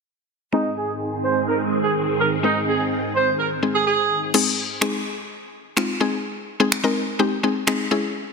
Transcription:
0.53 G#2 D#3 G#3 C4 D#4 G#4
0.77 G#4
1.24 C5
1.48 A#4
1.84 G#4
2.20 A#4
2.43 G#3 C4 D#4 A#4
2.67 G#4
3.15 C5
3.39 A#4
3.63 G#3 C4 D#4 G#4
3.75 G#4
3.87 G#4
4.34 G#3 C4 D#4 G#4, crash
4.81 G#3 C4 D#4 G#4, finger snap
5.77 G#3 C4 D#4 F4, finger snap
6.00 G#3 C4 D#4 G#4
6.60 G#3 C4 D#4 G#4
6.72 finger snap
6.84 G#3 C4 D#4 A#4
7.19 G#3 C4 D#4 G4
7.43 G#3 C4 D#4 G#4
7.67 G#3 C4 D#4 G#4, finger snap
7.91 G#3 C#4 E4 G#4

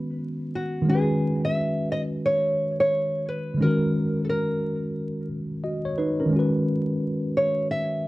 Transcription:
Already playing: D#3 G#3 B3 C#4 F#4 B4
0.55 F#4
0.82 D#3 G#3
0.89 C#4 F#4 G#4
0.95 B4
1.45 E5
1.92 D#5
2.26 C#5
2.80 C#5
3.29 B4
3.54 D3 G#3
3.61 D#3 C#4 F#4 A#4
3.67 A#4
4.25 A4
4.29 A#4
5.64 F#4 D#5
5.85 C#5
5.98 D#4 B4
6.20 C#4 A#4
6.26 D#3 G#3
6.33 C#4 F#4
6.39 B4
7.37 C#5
7.71 E5

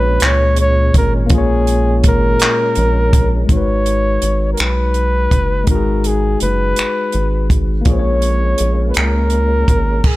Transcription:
Already playing: A#1 A#2 G#3 C#4 F4 G#4 B4 C#5
0.20 C#2, clap, closed hi-hat
0.25 C#5
0.56 closed hi-hat
0.61 C#5
0.94 G#1 A#4, kick, closed hi-hat
1.26 A#3, closed hi-hat
1.30 A#1 F4 G#4, kick
1.35 G#4 C#5
1.67 closed hi-hat
2.04 G#1 A#4, kick, closed hi-hat
2.40 A#1, clap, closed hi-hat
2.75 A#1, closed hi-hat
3.13 kick, closed hi-hat
3.45 G#3
3.49 G#1 D#4 F#4 C#5, kick, closed hi-hat
3.57 B4
3.86 closed hi-hat
4.22 G#1, closed hi-hat
4.53 A#4
4.57 B1 B4, finger snap, closed hi-hat
4.94 closed hi-hat
5.31 F#1, kick, closed hi-hat
5.64 G#3 D#4, kick, closed hi-hat
5.68 G#1 F#4 A#4
5.75 G#4
6.04 G#4, closed hi-hat
6.40 F#1 B4, closed hi-hat
6.76 G#1, finger snap, closed hi-hat
7.12 G#1, closed hi-hat
7.50 kick, closed hi-hat
7.81 G#3 A#3 C#4 F4
7.85 A#1 G#4 C#5, kick, closed hi-hat
7.93 C5
7.99 C#5
8.22 closed hi-hat
8.58 A#1, closed hi-hat
8.90 B4
8.94 C#2 A#4, finger snap, closed hi-hat
9.30 closed hi-hat
9.68 G#1, kick, closed hi-hat
10.04 G#4, kick, crash

